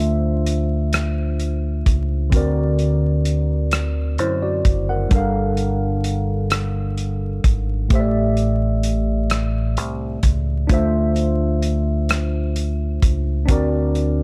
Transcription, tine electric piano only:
Already playing: A3 D4 F4 C5 E5
2.30 D3 C4 F#4
2.35 A#4 D5
4.20 E4 C5
4.42 F#4 D5
4.89 A#4 F#5
5.09 G3 D4 A4
5.14 A#4 F5
7.89 A2 A3 G4
7.93 C5 E5
8.00 D5
10.67 A3 D4 F4
10.72 C5 E5
13.46 C4 D4 F#4
13.51 A#4 D5

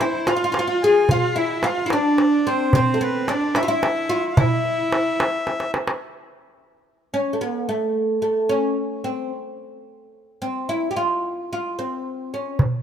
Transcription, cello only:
0.00 E4
0.28 F4
1.09 F4
1.38 E4
1.64 F4
1.91 D4
2.74 C4
3.28 D4
3.56 E4
3.70 E4
4.38 E4

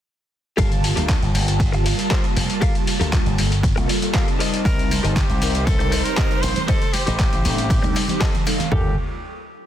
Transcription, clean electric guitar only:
0.57 G4 A4 A#4 F5
0.83 muted clean electric guitar stroke
0.96 G4 A4 A#4 F5
1.21 muted clean electric guitar stroke
1.59 muted clean electric guitar stroke
1.72 muted clean electric guitar stroke
1.85 muted clean electric guitar stroke
1.98 muted clean electric guitar stroke
2.10 G4 A4 A#4 C5
2.36 muted clean electric guitar stroke
2.61 G4 A4 A#4 F5
2.87 muted clean electric guitar stroke
2.99 G4 A4 A#4 F5
3.25 muted clean electric guitar stroke
3.63 muted clean electric guitar stroke
3.76 muted clean electric guitar stroke
3.88 muted clean electric guitar stroke
4.02 muted clean electric guitar stroke
4.14 G4 A4 A#4 F5
4.39 G4 A#4 C5 D#5
4.90 muted clean electric guitar stroke
5.03 G4 A#4 C5 D#5
5.28 muted clean electric guitar stroke
5.66 muted clean electric guitar stroke
5.79 muted clean electric guitar stroke
5.92 muted clean electric guitar stroke
6.05 muted clean electric guitar stroke
6.17 G4 A#4 C5 D#5
6.42 muted clean electric guitar stroke
6.68 G4 A4 C5 D#5
6.93 muted clean electric guitar stroke
7.06 G4 A4 C5 D#5
7.32 muted clean electric guitar stroke
7.69 muted clean electric guitar stroke
7.82 muted clean electric guitar stroke
7.95 muted clean electric guitar stroke
8.08 muted clean electric guitar stroke
8.20 G4 A4 C5 D#5 A5
8.46 F5, muted clean electric guitar stroke
8.71 A4 A#4 F5

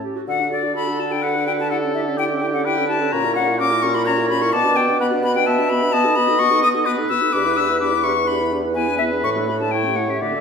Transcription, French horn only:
0.28 F#4
0.40 D4
0.52 F#4
0.64 D4
0.77 F#4
0.89 D4
1.01 F#4
1.13 D4
1.25 F#4
1.37 D4
1.49 F#4
1.60 D4
1.72 E4
1.84 C#4
1.95 E4
2.08 C#4
2.19 E4
2.31 C#4
2.43 E4
2.54 C#4
2.67 E4
2.79 C#4
2.90 E4
3.02 C#4
3.13 C#4
3.25 E4
3.37 C#4
3.48 E4
3.60 C#4
3.72 E4
3.83 C#4
3.95 E4
4.07 C#4
4.18 E4
4.30 C#4
4.42 E4
4.54 B3
4.65 D4
4.77 B3
4.89 D4
5.02 B3
5.13 D4
5.25 B3
5.36 D4
5.48 B3
5.60 D4
5.72 B3
5.83 D4
5.94 B3
6.06 D#4
6.17 B3
6.29 D#4
6.40 B3
6.52 D#4
6.64 B3
6.75 D#4
6.88 B3
6.99 D#4
7.11 B3
7.22 D#4
7.33 D4
7.46 E4
7.58 D4
7.69 E4
7.81 D4
7.93 E4
8.05 D4
8.17 E4
8.28 D4
8.41 E4
8.52 D4
8.64 E4
8.76 B3
8.88 D4
9.01 B3
9.12 D4
9.25 A3
9.36 D4
9.48 A3
9.61 D4
9.72 A3
9.85 C#4
9.96 A3
10.08 C#4
10.21 A3
10.34 D4

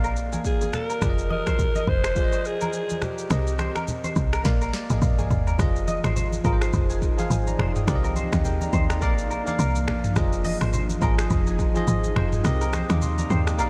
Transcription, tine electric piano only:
Already playing: A#3 A#4 D5 F5
1.01 F3 F4 G#4 D5
1.10 D#5
2.15 F3 F4 G#4 D5
2.24 D#5
3.29 C4 G4 A#4 D#5
4.44 A#3 A#4 D5 F5
4.74 D5
4.90 D#5
5.02 F5
5.19 G#5
5.58 F3 F4 G#4 D#5
6.44 F3 F4 G#4 A#4
6.53 C5
7.17 F3 F4 G#4 F5
7.31 C5 G#5
7.47 D5 A#5
7.59 D#5 C6
7.76 G5 D#6
7.86 C4 G4 A#4 D5
7.95 D#5
8.16 G4 D#5
8.33 F5
8.45 A#4 G5
8.61 D5 A#5
8.73 D#5 C6
8.90 D5 A#5
9.01 A#3 A#4 D5 F5
9.46 A#3 A#4 D5 F5
10.15 F3 F4 G#4 D#5
11.01 F3 F4 G#4 D#5
11.74 F3 F4 G#4 D#5
12.43 C4 G4 A#4 D#5
12.90 F5 D6
13.02 D#5 C6
13.19 D5 A#5
13.31 A#4 G5
13.47 G4 D#5
13.58 A#3 A#4 D5 F5

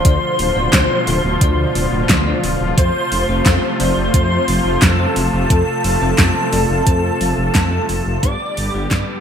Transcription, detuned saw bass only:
0.05 D2
0.39 D1
0.56 D1
0.73 D2
1.07 D1
1.24 D1
1.41 D2
1.75 D1
1.92 D1
2.09 D2
2.44 D1
2.61 D1
2.78 F2
3.12 F1
3.29 F1
3.46 F2
3.80 F1
3.97 F1
4.14 F2
4.48 F1
4.65 F1
4.82 F2
5.16 F1
5.33 F1
5.50 F2
5.84 F1
6.01 F1
6.18 F2
6.53 F1
6.70 F1
6.87 F2
7.21 F1
7.38 F1
7.55 F2
7.89 F1
8.06 F1
8.23 G2
8.57 G1
8.74 G1
8.91 G2

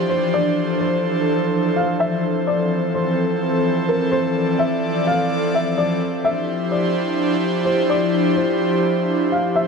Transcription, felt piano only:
0.10 C5
0.34 D5
0.80 C5
1.76 F5
2.00 E5
2.47 D5
2.95 C5
3.89 A#4
4.12 C5
4.59 E5
5.07 F5
5.55 E5
5.78 D5
6.25 E5
6.72 D5
7.65 C5
7.89 D5
8.36 C5
9.32 F5
9.56 E5

